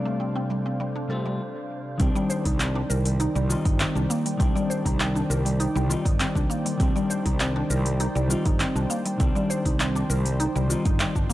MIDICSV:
0, 0, Header, 1, 7, 480
1, 0, Start_track
1, 0, Tempo, 600000
1, 1600, Time_signature, 4, 2, 24, 8
1, 9065, End_track
2, 0, Start_track
2, 0, Title_t, "Analog synth pad"
2, 0, Program_c, 0, 89
2, 0, Note_on_c, 0, 48, 74
2, 0, Note_on_c, 0, 62, 63
2, 0, Note_on_c, 0, 69, 67
2, 0, Note_on_c, 0, 74, 71
2, 0, Note_on_c, 0, 77, 81
2, 1566, Note_off_c, 0, 62, 0
2, 1566, Note_off_c, 0, 69, 0
2, 1566, Note_off_c, 0, 77, 0
2, 1567, Note_off_c, 0, 48, 0
2, 1568, Note_off_c, 0, 74, 0
2, 1598, Note_on_c, 0, 72, 68
2, 1598, Note_on_c, 0, 74, 75
2, 1599, Note_on_c, 0, 51, 78
2, 1599, Note_on_c, 0, 79, 91
2, 9065, Note_off_c, 0, 51, 0
2, 9065, Note_off_c, 0, 72, 0
2, 9065, Note_off_c, 0, 74, 0
2, 9065, Note_off_c, 0, 79, 0
2, 9065, End_track
3, 0, Start_track
3, 0, Title_t, "Synth texture"
3, 0, Program_c, 1, 99
3, 0, Note_on_c, 1, 72, 77
3, 1121, Note_off_c, 1, 72, 0
3, 9065, End_track
4, 0, Start_track
4, 0, Title_t, "Synth pluck"
4, 0, Program_c, 2, 84
4, 44, Note_on_c, 2, 57, 95
4, 154, Note_off_c, 2, 57, 0
4, 159, Note_on_c, 2, 60, 75
4, 231, Note_off_c, 2, 60, 0
4, 284, Note_on_c, 2, 60, 90
4, 394, Note_off_c, 2, 60, 0
4, 400, Note_on_c, 2, 55, 75
4, 519, Note_off_c, 2, 55, 0
4, 526, Note_on_c, 2, 60, 73
4, 635, Note_off_c, 2, 60, 0
4, 640, Note_on_c, 2, 55, 98
4, 753, Note_off_c, 2, 55, 0
4, 765, Note_on_c, 2, 62, 71
4, 874, Note_off_c, 2, 62, 0
4, 878, Note_on_c, 2, 69, 69
4, 998, Note_off_c, 2, 69, 0
4, 1005, Note_on_c, 2, 55, 89
4, 1114, Note_off_c, 2, 55, 0
4, 1597, Note_on_c, 2, 60, 97
4, 1711, Note_off_c, 2, 60, 0
4, 1724, Note_on_c, 2, 55, 109
4, 1833, Note_off_c, 2, 55, 0
4, 1838, Note_on_c, 2, 72, 75
4, 1958, Note_off_c, 2, 72, 0
4, 1964, Note_on_c, 2, 63, 76
4, 2074, Note_off_c, 2, 63, 0
4, 2078, Note_on_c, 2, 60, 96
4, 2192, Note_off_c, 2, 60, 0
4, 2203, Note_on_c, 2, 62, 79
4, 2270, Note_off_c, 2, 62, 0
4, 2317, Note_on_c, 2, 70, 77
4, 2431, Note_off_c, 2, 70, 0
4, 2443, Note_on_c, 2, 55, 71
4, 2553, Note_off_c, 2, 55, 0
4, 2558, Note_on_c, 2, 63, 104
4, 2672, Note_off_c, 2, 63, 0
4, 2684, Note_on_c, 2, 55, 102
4, 2794, Note_off_c, 2, 55, 0
4, 2798, Note_on_c, 2, 65, 73
4, 2912, Note_off_c, 2, 65, 0
4, 2922, Note_on_c, 2, 63, 73
4, 3033, Note_off_c, 2, 63, 0
4, 3039, Note_on_c, 2, 60, 103
4, 3152, Note_off_c, 2, 60, 0
4, 3164, Note_on_c, 2, 62, 73
4, 3230, Note_off_c, 2, 62, 0
4, 3280, Note_on_c, 2, 58, 101
4, 3399, Note_off_c, 2, 58, 0
4, 3406, Note_on_c, 2, 55, 78
4, 3515, Note_off_c, 2, 55, 0
4, 3518, Note_on_c, 2, 60, 109
4, 3632, Note_off_c, 2, 60, 0
4, 3644, Note_on_c, 2, 55, 103
4, 3754, Note_off_c, 2, 55, 0
4, 3759, Note_on_c, 2, 72, 73
4, 3879, Note_off_c, 2, 72, 0
4, 3884, Note_on_c, 2, 63, 82
4, 3994, Note_off_c, 2, 63, 0
4, 3999, Note_on_c, 2, 60, 99
4, 4112, Note_off_c, 2, 60, 0
4, 4123, Note_on_c, 2, 62, 74
4, 4190, Note_off_c, 2, 62, 0
4, 4240, Note_on_c, 2, 70, 83
4, 4352, Note_off_c, 2, 70, 0
4, 4363, Note_on_c, 2, 55, 76
4, 4473, Note_off_c, 2, 55, 0
4, 4478, Note_on_c, 2, 63, 100
4, 4592, Note_off_c, 2, 63, 0
4, 4604, Note_on_c, 2, 55, 104
4, 4714, Note_off_c, 2, 55, 0
4, 4718, Note_on_c, 2, 65, 73
4, 4832, Note_off_c, 2, 65, 0
4, 4842, Note_on_c, 2, 63, 82
4, 4953, Note_off_c, 2, 63, 0
4, 4957, Note_on_c, 2, 60, 101
4, 5071, Note_off_c, 2, 60, 0
4, 5083, Note_on_c, 2, 62, 75
4, 5150, Note_off_c, 2, 62, 0
4, 5197, Note_on_c, 2, 58, 102
4, 5318, Note_off_c, 2, 58, 0
4, 5325, Note_on_c, 2, 55, 84
4, 5434, Note_off_c, 2, 55, 0
4, 5438, Note_on_c, 2, 60, 108
4, 5552, Note_off_c, 2, 60, 0
4, 5565, Note_on_c, 2, 55, 105
4, 5674, Note_off_c, 2, 55, 0
4, 5679, Note_on_c, 2, 72, 74
4, 5798, Note_off_c, 2, 72, 0
4, 5804, Note_on_c, 2, 63, 83
4, 5914, Note_off_c, 2, 63, 0
4, 5920, Note_on_c, 2, 60, 99
4, 6033, Note_off_c, 2, 60, 0
4, 6047, Note_on_c, 2, 62, 82
4, 6112, Note_off_c, 2, 62, 0
4, 6161, Note_on_c, 2, 70, 79
4, 6273, Note_off_c, 2, 70, 0
4, 6286, Note_on_c, 2, 55, 74
4, 6395, Note_off_c, 2, 55, 0
4, 6401, Note_on_c, 2, 63, 105
4, 6513, Note_off_c, 2, 63, 0
4, 6524, Note_on_c, 2, 55, 103
4, 6633, Note_off_c, 2, 55, 0
4, 6639, Note_on_c, 2, 65, 72
4, 6752, Note_off_c, 2, 65, 0
4, 6765, Note_on_c, 2, 63, 79
4, 6874, Note_off_c, 2, 63, 0
4, 6880, Note_on_c, 2, 60, 102
4, 6993, Note_off_c, 2, 60, 0
4, 7004, Note_on_c, 2, 62, 74
4, 7070, Note_off_c, 2, 62, 0
4, 7119, Note_on_c, 2, 58, 104
4, 7238, Note_off_c, 2, 58, 0
4, 7244, Note_on_c, 2, 55, 82
4, 7353, Note_off_c, 2, 55, 0
4, 7360, Note_on_c, 2, 60, 105
4, 7473, Note_off_c, 2, 60, 0
4, 7483, Note_on_c, 2, 55, 107
4, 7593, Note_off_c, 2, 55, 0
4, 7599, Note_on_c, 2, 72, 81
4, 7718, Note_off_c, 2, 72, 0
4, 7723, Note_on_c, 2, 63, 76
4, 7833, Note_off_c, 2, 63, 0
4, 7838, Note_on_c, 2, 60, 98
4, 7952, Note_off_c, 2, 60, 0
4, 7964, Note_on_c, 2, 62, 77
4, 8030, Note_off_c, 2, 62, 0
4, 8077, Note_on_c, 2, 70, 83
4, 8191, Note_off_c, 2, 70, 0
4, 8204, Note_on_c, 2, 55, 73
4, 8314, Note_off_c, 2, 55, 0
4, 8318, Note_on_c, 2, 63, 103
4, 8432, Note_off_c, 2, 63, 0
4, 8444, Note_on_c, 2, 55, 105
4, 8554, Note_off_c, 2, 55, 0
4, 8559, Note_on_c, 2, 65, 75
4, 8672, Note_off_c, 2, 65, 0
4, 8684, Note_on_c, 2, 63, 75
4, 8794, Note_off_c, 2, 63, 0
4, 8798, Note_on_c, 2, 60, 98
4, 8912, Note_off_c, 2, 60, 0
4, 8923, Note_on_c, 2, 62, 73
4, 8990, Note_off_c, 2, 62, 0
4, 9036, Note_on_c, 2, 58, 104
4, 9065, Note_off_c, 2, 58, 0
4, 9065, End_track
5, 0, Start_track
5, 0, Title_t, "Clean electric guitar"
5, 0, Program_c, 3, 27
5, 0, Note_on_c, 3, 48, 79
5, 0, Note_on_c, 3, 55, 73
5, 0, Note_on_c, 3, 57, 72
5, 0, Note_on_c, 3, 60, 77
5, 0, Note_on_c, 3, 62, 94
5, 843, Note_off_c, 3, 48, 0
5, 847, Note_off_c, 3, 55, 0
5, 851, Note_off_c, 3, 57, 0
5, 855, Note_off_c, 3, 60, 0
5, 859, Note_off_c, 3, 62, 0
5, 862, Note_on_c, 3, 48, 71
5, 870, Note_on_c, 3, 55, 65
5, 878, Note_on_c, 3, 57, 65
5, 886, Note_on_c, 3, 60, 67
5, 894, Note_on_c, 3, 65, 80
5, 1111, Note_off_c, 3, 48, 0
5, 1115, Note_off_c, 3, 55, 0
5, 1119, Note_off_c, 3, 57, 0
5, 1123, Note_off_c, 3, 60, 0
5, 1127, Note_off_c, 3, 65, 0
5, 1581, Note_on_c, 3, 51, 96
5, 1591, Note_on_c, 3, 55, 78
5, 1602, Note_on_c, 3, 60, 81
5, 1613, Note_on_c, 3, 62, 103
5, 2763, Note_off_c, 3, 51, 0
5, 2768, Note_off_c, 3, 55, 0
5, 2773, Note_off_c, 3, 60, 0
5, 2779, Note_off_c, 3, 62, 0
5, 2780, Note_on_c, 3, 51, 81
5, 2790, Note_on_c, 3, 55, 72
5, 2802, Note_on_c, 3, 60, 72
5, 2813, Note_on_c, 3, 63, 83
5, 3483, Note_off_c, 3, 51, 0
5, 3488, Note_off_c, 3, 55, 0
5, 3494, Note_off_c, 3, 60, 0
5, 3499, Note_off_c, 3, 63, 0
5, 3500, Note_on_c, 3, 51, 93
5, 3510, Note_on_c, 3, 55, 87
5, 3522, Note_on_c, 3, 60, 79
5, 3533, Note_on_c, 3, 62, 98
5, 4683, Note_off_c, 3, 51, 0
5, 4688, Note_off_c, 3, 55, 0
5, 4693, Note_off_c, 3, 60, 0
5, 4699, Note_off_c, 3, 62, 0
5, 4703, Note_on_c, 3, 51, 76
5, 4715, Note_on_c, 3, 55, 72
5, 4725, Note_on_c, 3, 60, 73
5, 4735, Note_on_c, 3, 63, 89
5, 5404, Note_off_c, 3, 51, 0
5, 5410, Note_off_c, 3, 55, 0
5, 5415, Note_off_c, 3, 60, 0
5, 5420, Note_off_c, 3, 63, 0
5, 5421, Note_on_c, 3, 51, 93
5, 5432, Note_on_c, 3, 55, 92
5, 5443, Note_on_c, 3, 60, 89
5, 5453, Note_on_c, 3, 62, 103
5, 6603, Note_off_c, 3, 51, 0
5, 6608, Note_off_c, 3, 55, 0
5, 6614, Note_off_c, 3, 60, 0
5, 6619, Note_off_c, 3, 62, 0
5, 6623, Note_on_c, 3, 51, 78
5, 6633, Note_on_c, 3, 55, 76
5, 6644, Note_on_c, 3, 60, 75
5, 6655, Note_on_c, 3, 63, 84
5, 7324, Note_off_c, 3, 51, 0
5, 7329, Note_off_c, 3, 55, 0
5, 7334, Note_off_c, 3, 60, 0
5, 7340, Note_off_c, 3, 63, 0
5, 7343, Note_on_c, 3, 51, 95
5, 7354, Note_on_c, 3, 55, 85
5, 7364, Note_on_c, 3, 60, 83
5, 7374, Note_on_c, 3, 62, 100
5, 8524, Note_off_c, 3, 51, 0
5, 8529, Note_off_c, 3, 55, 0
5, 8534, Note_off_c, 3, 60, 0
5, 8540, Note_off_c, 3, 62, 0
5, 8543, Note_on_c, 3, 51, 80
5, 8552, Note_on_c, 3, 55, 73
5, 8564, Note_on_c, 3, 60, 73
5, 8575, Note_on_c, 3, 63, 84
5, 9065, Note_off_c, 3, 51, 0
5, 9065, Note_off_c, 3, 55, 0
5, 9065, Note_off_c, 3, 60, 0
5, 9065, Note_off_c, 3, 63, 0
5, 9065, End_track
6, 0, Start_track
6, 0, Title_t, "Fretless electric bass"
6, 0, Program_c, 4, 35
6, 1600, Note_on_c, 4, 36, 99
6, 1676, Note_off_c, 4, 36, 0
6, 1964, Note_on_c, 4, 36, 90
6, 2247, Note_off_c, 4, 36, 0
6, 2322, Note_on_c, 4, 36, 96
6, 2607, Note_off_c, 4, 36, 0
6, 2684, Note_on_c, 4, 36, 97
6, 2826, Note_off_c, 4, 36, 0
6, 2923, Note_on_c, 4, 31, 84
6, 3065, Note_off_c, 4, 31, 0
6, 3164, Note_on_c, 4, 36, 96
6, 3234, Note_off_c, 4, 36, 0
6, 3520, Note_on_c, 4, 36, 93
6, 3596, Note_off_c, 4, 36, 0
6, 3885, Note_on_c, 4, 36, 99
6, 4168, Note_off_c, 4, 36, 0
6, 4240, Note_on_c, 4, 36, 103
6, 4526, Note_off_c, 4, 36, 0
6, 4605, Note_on_c, 4, 36, 108
6, 4747, Note_off_c, 4, 36, 0
6, 4845, Note_on_c, 4, 31, 79
6, 4986, Note_off_c, 4, 31, 0
6, 5086, Note_on_c, 4, 36, 96
6, 5155, Note_off_c, 4, 36, 0
6, 5441, Note_on_c, 4, 36, 100
6, 5516, Note_off_c, 4, 36, 0
6, 5805, Note_on_c, 4, 36, 104
6, 6087, Note_off_c, 4, 36, 0
6, 6160, Note_on_c, 4, 36, 101
6, 6446, Note_off_c, 4, 36, 0
6, 6524, Note_on_c, 4, 36, 100
6, 6666, Note_off_c, 4, 36, 0
6, 6766, Note_on_c, 4, 31, 75
6, 6907, Note_off_c, 4, 31, 0
6, 7003, Note_on_c, 4, 36, 94
6, 7074, Note_off_c, 4, 36, 0
6, 7360, Note_on_c, 4, 36, 96
6, 7436, Note_off_c, 4, 36, 0
6, 7726, Note_on_c, 4, 36, 95
6, 8008, Note_off_c, 4, 36, 0
6, 8078, Note_on_c, 4, 36, 99
6, 8365, Note_off_c, 4, 36, 0
6, 8445, Note_on_c, 4, 36, 96
6, 8586, Note_off_c, 4, 36, 0
6, 8684, Note_on_c, 4, 31, 101
6, 8826, Note_off_c, 4, 31, 0
6, 8924, Note_on_c, 4, 31, 78
6, 9065, Note_off_c, 4, 31, 0
6, 9065, End_track
7, 0, Start_track
7, 0, Title_t, "Drums"
7, 50, Note_on_c, 9, 69, 30
7, 130, Note_off_c, 9, 69, 0
7, 165, Note_on_c, 9, 69, 39
7, 245, Note_off_c, 9, 69, 0
7, 290, Note_on_c, 9, 69, 28
7, 370, Note_off_c, 9, 69, 0
7, 403, Note_on_c, 9, 69, 70
7, 483, Note_off_c, 9, 69, 0
7, 529, Note_on_c, 9, 69, 28
7, 609, Note_off_c, 9, 69, 0
7, 643, Note_on_c, 9, 69, 38
7, 723, Note_off_c, 9, 69, 0
7, 768, Note_on_c, 9, 69, 26
7, 848, Note_off_c, 9, 69, 0
7, 882, Note_on_c, 9, 69, 67
7, 962, Note_off_c, 9, 69, 0
7, 1008, Note_on_c, 9, 69, 26
7, 1088, Note_off_c, 9, 69, 0
7, 1597, Note_on_c, 9, 46, 45
7, 1599, Note_on_c, 9, 36, 127
7, 1602, Note_on_c, 9, 69, 46
7, 1677, Note_off_c, 9, 46, 0
7, 1679, Note_off_c, 9, 36, 0
7, 1682, Note_off_c, 9, 69, 0
7, 1728, Note_on_c, 9, 69, 33
7, 1808, Note_off_c, 9, 69, 0
7, 1842, Note_on_c, 9, 69, 78
7, 1922, Note_off_c, 9, 69, 0
7, 1963, Note_on_c, 9, 46, 60
7, 1964, Note_on_c, 9, 36, 53
7, 1968, Note_on_c, 9, 69, 34
7, 2043, Note_off_c, 9, 46, 0
7, 2044, Note_off_c, 9, 36, 0
7, 2048, Note_off_c, 9, 69, 0
7, 2080, Note_on_c, 9, 39, 101
7, 2080, Note_on_c, 9, 46, 46
7, 2084, Note_on_c, 9, 69, 42
7, 2160, Note_off_c, 9, 39, 0
7, 2160, Note_off_c, 9, 46, 0
7, 2164, Note_off_c, 9, 69, 0
7, 2324, Note_on_c, 9, 69, 77
7, 2404, Note_off_c, 9, 69, 0
7, 2444, Note_on_c, 9, 46, 56
7, 2449, Note_on_c, 9, 69, 31
7, 2524, Note_off_c, 9, 46, 0
7, 2529, Note_off_c, 9, 69, 0
7, 2558, Note_on_c, 9, 46, 44
7, 2563, Note_on_c, 9, 69, 44
7, 2638, Note_off_c, 9, 46, 0
7, 2643, Note_off_c, 9, 69, 0
7, 2688, Note_on_c, 9, 69, 30
7, 2768, Note_off_c, 9, 69, 0
7, 2803, Note_on_c, 9, 69, 83
7, 2883, Note_off_c, 9, 69, 0
7, 2924, Note_on_c, 9, 36, 108
7, 2924, Note_on_c, 9, 46, 49
7, 2929, Note_on_c, 9, 69, 29
7, 3004, Note_off_c, 9, 36, 0
7, 3004, Note_off_c, 9, 46, 0
7, 3009, Note_off_c, 9, 69, 0
7, 3039, Note_on_c, 9, 39, 107
7, 3039, Note_on_c, 9, 46, 48
7, 3044, Note_on_c, 9, 69, 45
7, 3119, Note_off_c, 9, 39, 0
7, 3119, Note_off_c, 9, 46, 0
7, 3124, Note_off_c, 9, 69, 0
7, 3170, Note_on_c, 9, 69, 29
7, 3250, Note_off_c, 9, 69, 0
7, 3285, Note_on_c, 9, 69, 75
7, 3365, Note_off_c, 9, 69, 0
7, 3407, Note_on_c, 9, 46, 56
7, 3412, Note_on_c, 9, 69, 32
7, 3487, Note_off_c, 9, 46, 0
7, 3492, Note_off_c, 9, 69, 0
7, 3519, Note_on_c, 9, 36, 127
7, 3522, Note_on_c, 9, 46, 42
7, 3527, Note_on_c, 9, 69, 47
7, 3599, Note_off_c, 9, 36, 0
7, 3602, Note_off_c, 9, 46, 0
7, 3607, Note_off_c, 9, 69, 0
7, 3652, Note_on_c, 9, 69, 33
7, 3732, Note_off_c, 9, 69, 0
7, 3767, Note_on_c, 9, 69, 81
7, 3847, Note_off_c, 9, 69, 0
7, 3884, Note_on_c, 9, 36, 55
7, 3887, Note_on_c, 9, 46, 58
7, 3892, Note_on_c, 9, 69, 34
7, 3964, Note_off_c, 9, 36, 0
7, 3967, Note_off_c, 9, 46, 0
7, 3972, Note_off_c, 9, 69, 0
7, 4000, Note_on_c, 9, 39, 107
7, 4000, Note_on_c, 9, 46, 45
7, 4005, Note_on_c, 9, 69, 43
7, 4080, Note_off_c, 9, 39, 0
7, 4080, Note_off_c, 9, 46, 0
7, 4085, Note_off_c, 9, 69, 0
7, 4131, Note_on_c, 9, 69, 34
7, 4211, Note_off_c, 9, 69, 0
7, 4247, Note_on_c, 9, 69, 81
7, 4327, Note_off_c, 9, 69, 0
7, 4367, Note_on_c, 9, 46, 52
7, 4372, Note_on_c, 9, 69, 34
7, 4447, Note_off_c, 9, 46, 0
7, 4452, Note_off_c, 9, 69, 0
7, 4481, Note_on_c, 9, 46, 46
7, 4486, Note_on_c, 9, 69, 46
7, 4561, Note_off_c, 9, 46, 0
7, 4566, Note_off_c, 9, 69, 0
7, 4612, Note_on_c, 9, 69, 29
7, 4692, Note_off_c, 9, 69, 0
7, 4726, Note_on_c, 9, 69, 86
7, 4806, Note_off_c, 9, 69, 0
7, 4844, Note_on_c, 9, 36, 106
7, 4847, Note_on_c, 9, 46, 51
7, 4852, Note_on_c, 9, 69, 31
7, 4924, Note_off_c, 9, 36, 0
7, 4927, Note_off_c, 9, 46, 0
7, 4932, Note_off_c, 9, 69, 0
7, 4960, Note_on_c, 9, 39, 113
7, 4960, Note_on_c, 9, 46, 49
7, 4965, Note_on_c, 9, 69, 50
7, 5040, Note_off_c, 9, 39, 0
7, 5040, Note_off_c, 9, 46, 0
7, 5045, Note_off_c, 9, 69, 0
7, 5084, Note_on_c, 9, 36, 61
7, 5091, Note_on_c, 9, 69, 31
7, 5164, Note_off_c, 9, 36, 0
7, 5171, Note_off_c, 9, 69, 0
7, 5206, Note_on_c, 9, 69, 71
7, 5286, Note_off_c, 9, 69, 0
7, 5327, Note_on_c, 9, 46, 54
7, 5332, Note_on_c, 9, 69, 35
7, 5407, Note_off_c, 9, 46, 0
7, 5412, Note_off_c, 9, 69, 0
7, 5440, Note_on_c, 9, 36, 127
7, 5440, Note_on_c, 9, 46, 43
7, 5444, Note_on_c, 9, 69, 45
7, 5520, Note_off_c, 9, 36, 0
7, 5520, Note_off_c, 9, 46, 0
7, 5524, Note_off_c, 9, 69, 0
7, 5571, Note_on_c, 9, 69, 32
7, 5651, Note_off_c, 9, 69, 0
7, 5685, Note_on_c, 9, 69, 79
7, 5765, Note_off_c, 9, 69, 0
7, 5805, Note_on_c, 9, 36, 55
7, 5805, Note_on_c, 9, 46, 56
7, 5810, Note_on_c, 9, 69, 37
7, 5885, Note_off_c, 9, 36, 0
7, 5885, Note_off_c, 9, 46, 0
7, 5890, Note_off_c, 9, 69, 0
7, 5920, Note_on_c, 9, 39, 101
7, 5920, Note_on_c, 9, 46, 42
7, 5925, Note_on_c, 9, 69, 47
7, 6000, Note_off_c, 9, 39, 0
7, 6000, Note_off_c, 9, 46, 0
7, 6005, Note_off_c, 9, 69, 0
7, 6164, Note_on_c, 9, 69, 81
7, 6244, Note_off_c, 9, 69, 0
7, 6285, Note_on_c, 9, 46, 54
7, 6290, Note_on_c, 9, 69, 36
7, 6365, Note_off_c, 9, 46, 0
7, 6370, Note_off_c, 9, 69, 0
7, 6399, Note_on_c, 9, 46, 40
7, 6404, Note_on_c, 9, 69, 49
7, 6479, Note_off_c, 9, 46, 0
7, 6484, Note_off_c, 9, 69, 0
7, 6530, Note_on_c, 9, 69, 33
7, 6610, Note_off_c, 9, 69, 0
7, 6644, Note_on_c, 9, 69, 89
7, 6724, Note_off_c, 9, 69, 0
7, 6764, Note_on_c, 9, 46, 48
7, 6765, Note_on_c, 9, 36, 111
7, 6769, Note_on_c, 9, 69, 31
7, 6844, Note_off_c, 9, 46, 0
7, 6845, Note_off_c, 9, 36, 0
7, 6849, Note_off_c, 9, 69, 0
7, 6879, Note_on_c, 9, 39, 100
7, 6879, Note_on_c, 9, 46, 44
7, 6884, Note_on_c, 9, 69, 47
7, 6959, Note_off_c, 9, 39, 0
7, 6959, Note_off_c, 9, 46, 0
7, 6964, Note_off_c, 9, 69, 0
7, 7009, Note_on_c, 9, 69, 33
7, 7089, Note_off_c, 9, 69, 0
7, 7123, Note_on_c, 9, 69, 77
7, 7203, Note_off_c, 9, 69, 0
7, 7244, Note_on_c, 9, 46, 53
7, 7249, Note_on_c, 9, 69, 34
7, 7324, Note_off_c, 9, 46, 0
7, 7329, Note_off_c, 9, 69, 0
7, 7359, Note_on_c, 9, 46, 41
7, 7360, Note_on_c, 9, 36, 121
7, 7364, Note_on_c, 9, 69, 48
7, 7439, Note_off_c, 9, 46, 0
7, 7440, Note_off_c, 9, 36, 0
7, 7444, Note_off_c, 9, 69, 0
7, 7490, Note_on_c, 9, 69, 31
7, 7570, Note_off_c, 9, 69, 0
7, 7605, Note_on_c, 9, 69, 79
7, 7685, Note_off_c, 9, 69, 0
7, 7725, Note_on_c, 9, 36, 55
7, 7726, Note_on_c, 9, 46, 54
7, 7731, Note_on_c, 9, 69, 33
7, 7805, Note_off_c, 9, 36, 0
7, 7806, Note_off_c, 9, 46, 0
7, 7811, Note_off_c, 9, 69, 0
7, 7839, Note_on_c, 9, 39, 99
7, 7839, Note_on_c, 9, 46, 42
7, 7844, Note_on_c, 9, 69, 44
7, 7919, Note_off_c, 9, 39, 0
7, 7919, Note_off_c, 9, 46, 0
7, 7924, Note_off_c, 9, 69, 0
7, 7969, Note_on_c, 9, 69, 34
7, 8049, Note_off_c, 9, 69, 0
7, 8083, Note_on_c, 9, 69, 80
7, 8163, Note_off_c, 9, 69, 0
7, 8204, Note_on_c, 9, 46, 53
7, 8209, Note_on_c, 9, 69, 37
7, 8284, Note_off_c, 9, 46, 0
7, 8289, Note_off_c, 9, 69, 0
7, 8320, Note_on_c, 9, 46, 42
7, 8325, Note_on_c, 9, 69, 45
7, 8400, Note_off_c, 9, 46, 0
7, 8405, Note_off_c, 9, 69, 0
7, 8450, Note_on_c, 9, 69, 30
7, 8530, Note_off_c, 9, 69, 0
7, 8563, Note_on_c, 9, 69, 81
7, 8643, Note_off_c, 9, 69, 0
7, 8684, Note_on_c, 9, 36, 113
7, 8684, Note_on_c, 9, 46, 44
7, 8688, Note_on_c, 9, 69, 29
7, 8764, Note_off_c, 9, 36, 0
7, 8764, Note_off_c, 9, 46, 0
7, 8768, Note_off_c, 9, 69, 0
7, 8798, Note_on_c, 9, 39, 104
7, 8798, Note_on_c, 9, 46, 42
7, 8802, Note_on_c, 9, 69, 47
7, 8878, Note_off_c, 9, 39, 0
7, 8878, Note_off_c, 9, 46, 0
7, 8882, Note_off_c, 9, 69, 0
7, 8925, Note_on_c, 9, 36, 60
7, 8928, Note_on_c, 9, 69, 32
7, 9005, Note_off_c, 9, 36, 0
7, 9008, Note_off_c, 9, 69, 0
7, 9065, End_track
0, 0, End_of_file